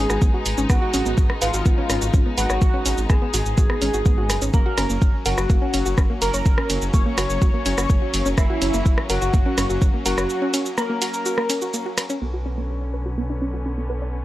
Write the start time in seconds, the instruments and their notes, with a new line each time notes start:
Already playing: string section G#3 B3 D#4, analog polysynth G#4, synth bell G#5
0.10 detuned saw bass G#1, synth arpeggio sound F#4, cross-stick, shaker
0.22 detuned saw bass G#1, synth arpeggio sound B3, kick, shaker
0.34 synth arpeggio sound F#4
0.46 detuned saw bass G#1, open hi-hat, shaker
0.58 detuned saw bass G#1, synth arpeggio sound C#4, shaker
0.70 detuned saw bass G#1, synth arpeggio sound B3, analog polysynth F#4, synth bell F#5, kick, cross-stick, shaker
0.82 synth arpeggio sound F#4
0.94 detuned saw bass G#1, synth arpeggio sound C#4, open hi-hat, shaker
1.06 detuned saw bass G#1, synth arpeggio sound B3, shaker
1.18 detuned saw bass G#1, kick, shaker
1.30 cross-stick
1.42 detuned saw bass G#1, analog polysynth F4, synth arpeggio sound B4, synth bell F5, open hi-hat, shaker
1.54 detuned saw bass G#1, synth arpeggio sound F#4, shaker
1.66 detuned saw bass G#1, synth arpeggio sound B3, kick, shaker
1.78 synth arpeggio sound C#4
1.90 detuned saw bass G#1, synth arpeggio sound C#4, cross-stick, open hi-hat, shaker
2.02 detuned saw bass G#1, synth arpeggio sound F#4, shaker
2.14 detuned saw bass G#1, synth arpeggio sound C#4, kick, shaker
2.26 synth arpeggio sound B3
2.38 detuned saw bass G#1, analog polysynth F#4, synth arpeggio sound B4, synth bell F#5, open hi-hat, shaker
2.50 detuned saw bass G#1, synth arpeggio sound C#5, cross-stick, shaker
2.62 detuned saw bass G#1, kick, shaker
2.74 synth arpeggio sound C#4
2.86 detuned saw bass G#1, synth arpeggio sound C#4, open hi-hat, shaker
2.98 detuned saw bass G#1, shaker
3.10 detuned saw bass G#1, synth arpeggio sound B3, analog polysynth G#4, synth bell G#5, kick, cross-stick, shaker
3.22 synth arpeggio sound B3
3.34 detuned saw bass G#1, synth arpeggio sound F#4, open hi-hat, shaker
3.46 detuned saw bass G#1, shaker
3.58 detuned saw bass G#1, synth arpeggio sound F#4, kick, shaker
3.70 synth arpeggio sound B3, cross-stick
3.82 detuned saw bass G#1, synth arpeggio sound C#4, open hi-hat, shaker
3.94 detuned saw bass G#1, synth arpeggio sound F#4, shaker
4.06 detuned saw bass G#1, synth arpeggio sound B3, kick, shaker
4.18 synth arpeggio sound F#4
4.30 detuned saw bass F#1, cross-stick, open hi-hat, shaker
4.42 detuned saw bass G#1, synth arpeggio sound C#4, shaker
4.54 detuned saw bass F#1, string section F#3 A#3 C#4, synth arpeggio sound A#3, analog polysynth A#4, synth bell A#5, kick, shaker
4.66 synth arpeggio sound F#4
4.78 detuned saw bass F#1, synth arpeggio sound C#4, cross-stick, open hi-hat, ride, shaker
4.90 detuned saw bass F#1, synth arpeggio sound A#3, shaker
5.02 detuned saw bass F#1, kick, shaker
5.26 detuned saw bass F#1, analog polysynth F#4, synth arpeggio sound A#4, synth bell F#5, open hi-hat, ride, shaker
5.38 detuned saw bass F#1, synth arpeggio sound F#4, cross-stick, shaker
5.50 detuned saw bass F#1, synth arpeggio sound A#3, kick, shaker
5.62 synth arpeggio sound C#4
5.74 detuned saw bass F#1, synth arpeggio sound C#4, open hi-hat, ride, shaker
5.86 detuned saw bass F#1, synth arpeggio sound F#4, shaker
5.98 detuned saw bass F#1, synth arpeggio sound C#4, kick, cross-stick, shaker
6.10 synth arpeggio sound A#3
6.22 detuned saw bass F#1, synth arpeggio sound A#4, analog polysynth A#4, synth bell A#5, open hi-hat, ride, shaker
6.34 detuned saw bass F#1, synth arpeggio sound C#5, shaker
6.46 detuned saw bass F#1, kick, shaker
6.58 synth arpeggio sound C#4, cross-stick
6.70 detuned saw bass F#1, synth arpeggio sound C#4, open hi-hat, ride, shaker
6.82 detuned saw bass F#1, shaker
6.94 detuned saw bass F#1, synth arpeggio sound A#3, analog polysynth C#5, synth bell C#6, kick, shaker
7.06 synth arpeggio sound A#3
7.18 detuned saw bass F#1, synth arpeggio sound F#4, cross-stick, open hi-hat, ride, shaker
7.30 detuned saw bass F#1, shaker
7.42 detuned saw bass F#1, synth arpeggio sound F#4, kick, shaker
7.54 synth arpeggio sound A#3
7.66 detuned saw bass F#1, synth arpeggio sound C#4, open hi-hat, ride, shaker
7.78 detuned saw bass F#1, synth arpeggio sound F#4, cross-stick, shaker
7.90 detuned saw bass F#1, synth arpeggio sound A#3, kick, shaker
8.02 synth arpeggio sound F#4
8.14 detuned saw bass F#1, open hi-hat, ride, shaker
8.26 detuned saw bass F#1, synth arpeggio sound C#4, shaker
8.38 detuned saw bass F#1, synth arpeggio sound A#3, analog polysynth E4, synth bell E5, kick, cross-stick, shaker
8.50 synth arpeggio sound F#4
8.62 detuned saw bass F#1, synth arpeggio sound C#4, open hi-hat, ride, shaker
8.74 detuned saw bass F#1, synth arpeggio sound A#3, shaker
8.86 detuned saw bass F#1, kick, shaker
8.98 cross-stick
9.10 detuned saw bass F#1, analog polysynth F#4, synth arpeggio sound A#4, synth bell F#5, open hi-hat, ride, shaker
9.22 detuned saw bass F#1, synth arpeggio sound F#4, shaker
9.34 detuned saw bass F#1, synth arpeggio sound A#3, kick, shaker
9.46 synth arpeggio sound C#4
9.58 detuned saw bass F#1, synth arpeggio sound C#4, cross-stick, open hi-hat, ride, shaker
9.70 detuned saw bass F#1, synth arpeggio sound F#4, shaker
9.82 detuned saw bass F#1, synth arpeggio sound C#4, kick, shaker
9.94 synth arpeggio sound A#3
10.06 detuned saw bass F#1, analog polysynth F#4, synth arpeggio sound A#4, synth bell F#5, open hi-hat, ride, shaker
10.18 detuned saw bass F#1, synth arpeggio sound C#5, cross-stick, shaker
10.30 shaker
10.42 synth arpeggio sound C#4
10.54 synth arpeggio sound C#4, open hi-hat, ride, shaker
10.66 shaker
10.78 synth arpeggio sound A#3, analog polysynth A#4, synth bell A#5, cross-stick, shaker
10.90 synth arpeggio sound A#3
11.02 synth arpeggio sound F#4, open hi-hat, ride, shaker
11.14 shaker
11.26 synth arpeggio sound F#4, shaker
11.38 synth arpeggio sound A#3, cross-stick
11.50 synth arpeggio sound C#4, open hi-hat, ride, shaker
11.62 synth arpeggio sound F#4, shaker
11.74 synth arpeggio sound A#3, shaker
11.86 synth arpeggio sound F#4
11.98 cross-stick, open hi-hat, ride, shaker
12.10 synth arpeggio sound C#4, shaker
12.22 detuned saw bass B1, string section D3 B3 C#4, synth arpeggio sound B3
12.34 synth arpeggio sound F#4
12.46 synth arpeggio sound C#4
12.58 synth arpeggio sound B3
12.94 synth arpeggio sound B4
13.06 synth arpeggio sound F#4
13.18 synth arpeggio sound B3
13.30 synth arpeggio sound D4
13.42 synth arpeggio sound C#4
13.54 synth arpeggio sound F#4
13.66 synth arpeggio sound C#4
13.78 synth arpeggio sound B3
13.90 synth arpeggio sound B4
14.02 synth arpeggio sound D5